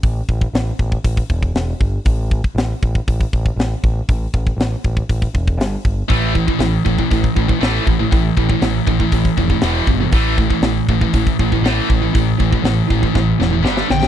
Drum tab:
HH |o---o---o---o---|o---o---o---o---|o---o---o---o---|o---o---o---o---|
SD |----o-------o---|----o-------o---|----o-------o---|----o-------o---|
BD |o-oo--oooooo--o-|o-oo--oooooo--o-|o-oo--oooooo--o-|o-oo--oooooo--o-|

HH |o---o---o---o---|o---o---o---o---|o---o-----------|
SD |----o-------o---|----o-------o---|----o---o-o-oooo|
BD |o-oo--oooooo--o-|o-oo--oooooo--o-|o-oo--ooo-------|